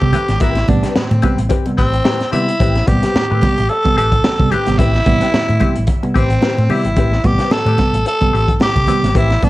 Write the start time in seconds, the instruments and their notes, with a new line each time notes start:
Already playing: tenor saxophone G4
0.01 fingered electric bass C2, tine electric piano C3 G3 B3, muted hollow-body jazz guitar stroke, kick, muted conga
0.13 hollow-body jazz guitar C4 G4 B4, closed hi-hat, high conga, low conga
0.28 fingered electric bass G#1, tine electric piano A2, muted hollow-body jazz guitar stroke, snare, closed hi-hat
0.40 fingered electric bass A1, tine electric piano A2, hollow-body jazz guitar C4 G4 B4, tenor saxophone E4, kick, closed hi-hat, muted conga
0.55 muted hollow-body jazz guitar stroke, snare, closed hi-hat, muted conga
0.68 fingered electric bass A1, tine electric piano C3 G3 B3, tenor saxophone D4, muted hollow-body jazz guitar stroke, kick, closed hi-hat, high conga
0.83 tine electric piano G3 B3, hollow-body jazz guitar C4 G4 B4, snare, closed hi-hat
0.95 tine electric piano A2, tenor saxophone C4, muted hollow-body jazz guitar stroke, muted fingered electric bass stroke, snare, muted conga, high conga
1.11 fingered electric bass A2, closed hi-hat, muted conga, low conga
1.22 tine electric piano C3 G3 B3, hollow-body jazz guitar C4 G4 B4, kick, closed hi-hat, high conga, low conga
1.38 fingered electric bass A1, tine electric piano G3 B3, muted hollow-body jazz guitar stroke, closed hi-hat
1.49 hollow-body jazz guitar C4 G4 B4, kick, closed hi-hat, muted conga
1.66 tine electric piano C3 G3 B3, muted hollow-body jazz guitar stroke, closed hi-hat, muted conga
1.77 fingered electric bass A1, hollow-body jazz guitar C4 G4 B4, tenor saxophone C4, kick, closed hi-hat
1.93 tine electric piano A2, muted hollow-body jazz guitar stroke, closed hi-hat
2.05 tine electric piano A2, hollow-body jazz guitar C4 G4 B4, snare, muted conga, high conga
2.20 muted hollow-body jazz guitar stroke, snare, closed hi-hat
2.31 tine electric piano C3 G3 B3, hollow-body jazz guitar C4 G4 B4, tenor saxophone E4, closed hi-hat, high conga, low conga
2.48 muted hollow-body jazz guitar stroke, closed hi-hat
2.60 fingered electric bass A1, tine electric piano A2, hollow-body jazz guitar C4 G4 B4, kick, closed hi-hat, muted conga
2.75 muted hollow-body jazz guitar stroke, snare, closed hi-hat, muted conga
2.87 fingered electric bass A1, tine electric piano C3 G3 B3, tenor saxophone G4, muted hollow-body jazz guitar stroke, kick, closed hi-hat, high conga
3.03 tine electric piano G3 B3, hollow-body jazz guitar C4 G4 B4, snare, closed hi-hat
3.14 tine electric piano A2, muted fingered electric bass stroke, muted hollow-body jazz guitar stroke, snare, muted conga, high conga
3.30 fingered electric bass A2, hollow-body jazz guitar C4 G4 B4, closed hi-hat, muted conga, low conga
3.41 tine electric piano C3 G3 B3, muted hollow-body jazz guitar stroke, kick, snare, closed hi-hat, high conga, low conga
3.57 fingered electric bass A1, tine electric piano G3 B3, muted hollow-body jazz guitar stroke, closed hi-hat
3.69 tenor saxophone A4, muted hollow-body jazz guitar stroke, closed hi-hat
3.84 tine electric piano C3 G3 B3, kick, closed hi-hat
3.97 fingered electric bass A1, hollow-body jazz guitar C4 G4 B4, tenor saxophone A4, closed hi-hat
4.12 tine electric piano A2, muted hollow-body jazz guitar stroke, kick, closed hi-hat
4.24 muted fingered electric bass stroke, muted hollow-body jazz guitar stroke, snare, muted conga, high conga
4.39 fingered electric bass C2, tine electric piano C3 G3 B3, muted hollow-body jazz guitar stroke, kick, closed hi-hat
4.51 tine electric piano A2, hollow-body jazz guitar C4 G4 B4, tenor saxophone G4, closed hi-hat, high conga, low conga
4.66 fingered electric bass G#1, tine electric piano C3 G3 B3, muted hollow-body jazz guitar stroke, snare, closed hi-hat
4.78 fingered electric bass A1, tine electric piano A2, hollow-body jazz guitar C4 G4 B4, tenor saxophone E4, kick, closed hi-hat, muted conga
4.95 muted hollow-body jazz guitar stroke, snare, muted conga
5.06 fingered electric bass A1, tine electric piano C3 G3 B3, muted hollow-body jazz guitar stroke, kick, closed hi-hat, high conga
5.21 tine electric piano G3 B3, hollow-body jazz guitar C4 G4 B4, snare, closed hi-hat
5.33 tine electric piano A2, muted hollow-body jazz guitar stroke, muted fingered electric bass stroke, snare, muted conga, high conga
5.48 fingered electric bass A2, closed hi-hat, muted conga, low conga
5.60 tine electric piano C3 G3 B3, hollow-body jazz guitar C4 G4 B4, kick, closed hi-hat, high conga, low conga
5.75 fingered electric bass A1, tine electric piano G3 B3, muted hollow-body jazz guitar stroke, closed hi-hat
5.87 kick, closed hi-hat, muted conga
6.03 tine electric piano C3 G3 B3, muted hollow-body jazz guitar stroke, closed hi-hat, muted conga
6.14 fingered electric bass A1, hollow-body jazz guitar C4 G4 B4, tenor saxophone C4, kick, closed hi-hat
6.30 tine electric piano A2, muted hollow-body jazz guitar stroke, closed hi-hat
6.41 tine electric piano A2, hollow-body jazz guitar C4 G4 B4, snare, muted conga, high conga
6.57 fingered electric bass A2, muted hollow-body jazz guitar stroke, closed hi-hat, muted conga
6.69 tine electric piano C3 G3 B3, hollow-body jazz guitar C4 G4 B4, tenor saxophone E4, open hi-hat, high conga, low conga
6.84 fingered electric bass G#1, tine electric piano G3 B3, muted hollow-body jazz guitar stroke, closed hi-hat
6.96 fingered electric bass A1, tine electric piano A2, hollow-body jazz guitar C4 G4 B4, kick, closed hi-hat, muted conga
7.12 muted hollow-body jazz guitar stroke, snare
7.24 fingered electric bass A1, tine electric piano C3 G3 B3, tenor saxophone G4, muted hollow-body jazz guitar stroke, kick, closed hi-hat, high conga
7.39 tine electric piano G3 B3, hollow-body jazz guitar C4 G4 B4, snare, closed hi-hat
7.51 tine electric piano A2, tenor saxophone A4, muted fingered electric bass stroke, muted hollow-body jazz guitar stroke, snare, high conga
7.66 fingered electric bass A2, hollow-body jazz guitar C4 G4 B4, closed hi-hat, muted conga, low conga
7.78 tine electric piano C3 G3 B3, muted hollow-body jazz guitar stroke, kick, snare, closed hi-hat, high conga, low conga
7.93 fingered electric bass A1, tine electric piano G3 B3, muted hollow-body jazz guitar stroke, closed hi-hat
8.06 tenor saxophone A4, muted hollow-body jazz guitar stroke, closed hi-hat
8.21 tine electric piano C3 G3 B3, kick, closed hi-hat, muted conga
8.33 fingered electric bass A1, hollow-body jazz guitar C4 G4 B4, closed hi-hat
8.48 tine electric piano A2, muted hollow-body jazz guitar stroke, kick, closed hi-hat
8.60 tine electric piano A2, tenor saxophone G4, muted fingered electric bass stroke, muted hollow-body jazz guitar stroke, snare, muted conga, high conga
8.75 fingered electric bass C2, muted hollow-body jazz guitar stroke, kick, closed hi-hat, muted conga
8.87 tine electric piano C3 G3 B3, hollow-body jazz guitar C4 G4 B4, closed hi-hat, high conga, low conga
9.03 fingered electric bass G#1, tine electric piano G3 B3, muted hollow-body jazz guitar stroke, snare, closed hi-hat
9.15 fingered electric bass A1, tine electric piano A2, hollow-body jazz guitar C4 G4 B4, tenor saxophone E4, kick, closed hi-hat
9.30 muted hollow-body jazz guitar stroke, snare, closed hi-hat, muted conga
9.42 fingered electric bass A1, tine electric piano C3 G3 B3, tenor saxophone D4, muted hollow-body jazz guitar stroke, kick, closed hi-hat, high conga